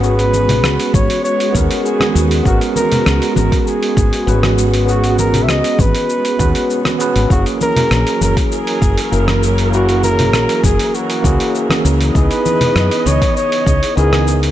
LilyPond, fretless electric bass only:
\new Staff \with { instrumentName = "Fretless electric bass" } { \clef bass \time 4/4 \key gis \minor \tempo 4 = 99 gis,,4 cis,16 r16 gis,,16 r8. dis,16 r8. dis,8 | gis,,16 r8. cis,16 r16 gis,,16 r8. gis,,16 r16 gis,,4~ | gis,,4 cis,16 r16 gis,,16 r8. dis,16 r4 gis,,16 | fis,,16 r8. ais,,16 r16 fis,,16 r8. fis,,16 r16 fis,,4~ |
fis,,4 ais,,16 r16 fis,,16 r8. cis,16 r8. cis,8 | cis,16 r8. fis,16 r16 cis,16 r8. cis,16 r16 cis,4 | }